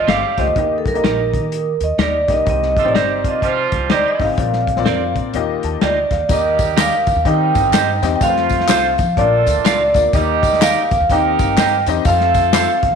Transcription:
0.08 G1 G3 A3 C4 G4 A4 F5, snare, closed hi-hat
0.38 C#2 A3 F4 G4 C5 D#5, kick, snare, closed hi-hat
0.47 D2
0.56 D#2 D#3 A#3 D#4 G4 D#5, kick, closed hi-hat
0.78 A4
0.86 C2 A#4, kick, closed hi-hat
0.94 A#3 D#4 G4 D#5, closed hi-hat
1.04 A#1 D#4 G4 A#4 D#5, snare, closed hi-hat
1.34 D#3, kick, closed hi-hat
1.52 closed hi-hat
1.81 D#2 D#5, closed hi-hat
1.98 D#2 D#4 G4 A#4 D#5, snare, closed hi-hat
2.02 D5
2.27 B1 A#3 D#4 G4 D#5, kick, snare, closed hi-hat
2.32 D#5
2.46 C2 C3 C4 D#4 G4 D#5, kick, closed hi-hat
2.50 D#5
2.62 snare
2.77 A3 D4 F4 A4, kick, closed hi-hat
2.81 A1 C4 D#4 G4 C5 D#5
2.88 D5
2.94 G1 G3 C4 D#4 G4 C5 D#5, snare, closed hi-hat
3.23 C3 F3 A#3 D4 F4, kick, closed hi-hat
3.28 D#5
3.42 F3 G3 C4 F4 C5, kick, closed hi-hat
3.72 C2, kick, closed hi-hat
3.90 D2 G3 C4 D#4 G4 C5 D5 D#5, snare, closed hi-hat
4.08 D#5
4.18 G#1 C4 D#4 G4 D#5, kick, snare, open hi-hat
4.23 F5
4.30 A1
4.37 A#1 A#2 C4 F4 A#4 D5, kick, closed hi-hat
4.53 snare
4.67 kick, closed hi-hat
4.76 A#1 C4 F4 A#4 D5, snare
4.86 F2 C4 F4 A#4 D5, snare, closed hi-hat
5.16 A#2, kick, closed hi-hat
5.34 D#2 D#3 A#3 F4 G4 D#5, closed hi-hat
5.63 D#2 A5, closed hi-hat
5.81 D2 A#3 F4 G4 D5 D#5 G5, snare, closed hi-hat
6.11 D#2 F5, kick, snare, closed hi-hat
6.29 D#2 D#3 G3 A#3 D#4 G4 D#5, kick, closed hi-hat, tambourine
6.33 D#5
6.59 kick, closed hi-hat, tambourine
6.77 D#4 G4 A#4 D#5, snare, clap, closed hi-hat, tambourine
6.81 F5
7.07 F2, kick, closed hi-hat, tambourine
7.16 D#2
7.25 D#3 G3 C4 D#4 G4 D#5 G5, kick, closed hi-hat
7.55 G1, kick, closed hi-hat, tambourine
7.72 G2 D#4 G4 C5 D#5, snare, clap, closed hi-hat, tambourine
8.02 E2 C4 D#4 G4 D#5, snare, closed hi-hat, tambourine
8.16 G5
8.21 F2 F3 A3 C4 F4 B4 F5, kick, closed hi-hat, tambourine
8.28 C5
8.36 snare
8.49 kick, closed hi-hat, tambourine
8.60 snare
8.68 C2 F4 A4 C5 F5, snare, clap, closed hi-hat, tambourine
8.98 F3, kick, closed hi-hat, tambourine
9.16 A#1 A#2 A3 A#3 D4 F4 A4 D5, kick, closed hi-hat
9.46 D2, closed hi-hat, tambourine
9.55 A1
9.65 C#2 F4 A#4 D5 F5, snare, clap, closed hi-hat, tambourine
9.94 D2 A#3 D4 F4 D5, kick, snare, closed hi-hat, tambourine
10.13 D#2 D#3 G3 A#3 D#4 G4 D#5, kick, closed hi-hat, tambourine
10.43 kick, closed hi-hat, tambourine
10.53 snare
10.61 D#4 G4 A#4 D#5 F5, snare, clap, closed hi-hat, tambourine
10.91 F2, kick, closed hi-hat, tambourine
11.01 D#2
11.09 D#2 D#3 A#3 C4 D#4 G4 A#4 D#5 G5, kick, closed hi-hat, tambourine
11.39 G1, kick, closed hi-hat, tambourine
11.57 D#4 G4 C5 D#5, snare, clap, closed hi-hat, tambourine
11.86 E2 C4 D#4 G4 D#5, closed hi-hat, tambourine
12.05 F2 A3 C4 F4 A4 F5, kick, closed hi-hat, tambourine
12.20 snare
12.34 kick, closed hi-hat, tambourine
12.53 F4 A4 C5 F5, snare, clap, closed hi-hat, tambourine
12.83 C2, kick, closed hi-hat
12.91 F2

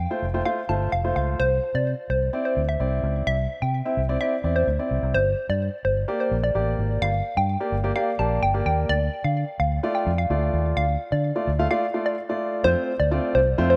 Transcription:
Already playing: G5
0.10 A3 F4 C5
0.22 F1
0.34 A3 F4 C5
0.46 A3 F4 C5 F5
0.69 G1 A3 F4 C5 A5
0.92 F1 F5
1.04 A3 F4 C5
1.16 C#2 F5
1.40 C2 C5
1.75 C3 D5
2.10 C2 C5
2.33 C4 E4 D5
2.45 C5
2.57 D2
2.69 E5
2.80 C2 C4 E4 D5
3.03 C#2
3.27 C2 E5
3.62 C3 G5
3.85 C4 E4 E5
3.97 C2
4.09 C4 E4 D5
4.20 C4 E4 D5 E5
4.44 E2 C4 E4 D5
4.56 C5
4.67 D2
4.79 C4 E4 D5
4.91 C2
5.03 C2
5.14 G1 C5
5.49 G2 D5
5.85 G1 C5
6.08 A#3 G4 D5
6.20 C5
6.31 A#1
6.44 D5
6.55 A1 A#3 G4 D5
6.79 G#1
7.02 G1 F5
7.37 G2 G5
7.60 A#3 G4 D5
7.72 G1
7.84 A#3 G4 D5
7.96 A#3 G4 D5 F5
8.19 A#1 A#3 G4 D5 A5
8.43 G1 G5
8.54 A#3 G4 D5
8.66 D#2 G5
8.89 D2 D5
9.24 D3 F5
9.60 D2 F5
9.83 A3 F4 D5
9.95 G5
10.07 F2
10.18 F5
10.30 D2 A3 F4 D5
10.53 D#2
10.77 D2 F5
11.12 D3 D5
11.35 A3 F4 D5
11.47 D2
11.59 A3 F4 F5
11.71 A3 F4 D5 F5
11.94 A3 F4 D5
12.06 D5
12.29 A3 F4 D5
12.64 F2 A3 C4 F4 C5
13.00 D2 D5
13.11 A3 C4 F4 D5
13.35 C2 C5
13.58 F2 A3 C4 F4 C5
13.70 C5

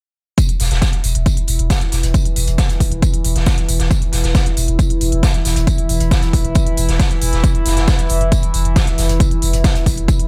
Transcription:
0.38 E3 E4, kick, closed hi-hat, tambourine
0.49 closed hi-hat
0.60 E1, snare, open hi-hat, tambourine
0.71 E1, snare, closed hi-hat
0.81 kick, snare, closed hi-hat, tambourine
0.93 closed hi-hat
1.04 E1, open hi-hat, tambourine
1.15 E1, closed hi-hat
1.26 kick, closed hi-hat, tambourine
1.37 closed hi-hat
1.48 E1, open hi-hat, tambourine
1.59 E1, closed hi-hat
1.70 kick, snare, closed hi-hat, tambourine
1.81 closed hi-hat
1.92 E1, snare, open hi-hat, tambourine
2.03 E1, closed hi-hat
2.14 kick, closed hi-hat, tambourine
2.25 closed hi-hat
2.36 E1, open hi-hat, tambourine
2.47 E1, closed hi-hat
2.58 kick, snare, closed hi-hat, tambourine
2.70 closed hi-hat
2.80 E1, kick, open hi-hat, tambourine
2.92 E1, closed hi-hat
3.02 kick, closed hi-hat, tambourine
3.14 closed hi-hat
3.25 E1, open hi-hat, tambourine
3.36 E1, snare, closed hi-hat
3.46 kick, snare, closed hi-hat, tambourine
3.58 closed hi-hat
3.69 E1, open hi-hat, tambourine
3.79 E1, snare, closed hi-hat
3.91 kick, closed hi-hat, tambourine
4.02 closed hi-hat
4.12 E1, snare, open hi-hat, tambourine
4.24 E1, snare, closed hi-hat
4.35 kick, snare, closed hi-hat, tambourine
4.46 closed hi-hat
4.57 E1, open hi-hat, tambourine
4.68 E1, closed hi-hat
4.79 kick, closed hi-hat, tambourine
4.90 closed hi-hat
5.01 E1, open hi-hat, tambourine
5.12 E1, closed hi-hat
5.23 kick, snare, closed hi-hat, tambourine
5.34 closed hi-hat
5.45 E1, snare, open hi-hat, tambourine
5.56 E1, closed hi-hat
5.67 kick, closed hi-hat, tambourine
5.78 closed hi-hat
5.89 E1, open hi-hat, tambourine
6.00 E1, closed hi-hat
6.11 kick, snare, closed hi-hat, tambourine
6.22 closed hi-hat
6.33 E1, kick, open hi-hat, tambourine
6.45 E1, closed hi-hat
6.55 kick, closed hi-hat, tambourine
6.67 closed hi-hat
6.77 E1, open hi-hat, tambourine
6.89 E1, snare, closed hi-hat
6.99 kick, snare, closed hi-hat, tambourine
7.11 closed hi-hat
7.22 E1, open hi-hat, tambourine
7.33 E1, snare, closed hi-hat
7.44 kick, closed hi-hat, tambourine
7.55 closed hi-hat
7.66 F1, snare, open hi-hat, tambourine
7.77 F1, snare, closed hi-hat
7.88 kick, snare, closed hi-hat, tambourine
7.99 closed hi-hat
8.09 F1, open hi-hat, tambourine
8.21 F1, closed hi-hat
8.32 kick, closed hi-hat, tambourine
8.43 closed hi-hat
8.54 F1, open hi-hat, tambourine
8.65 F1, closed hi-hat
8.76 kick, snare, closed hi-hat, tambourine
8.87 closed hi-hat
8.98 F1, snare, open hi-hat, tambourine
9.09 F1, closed hi-hat
9.20 kick, closed hi-hat, tambourine
9.31 closed hi-hat
9.42 F1, open hi-hat, tambourine
9.53 F1, closed hi-hat
9.64 kick, snare, closed hi-hat, tambourine
9.75 closed hi-hat
9.86 F1, kick, open hi-hat, tambourine
9.97 F1, closed hi-hat
10.08 kick, closed hi-hat, tambourine
10.19 closed hi-hat

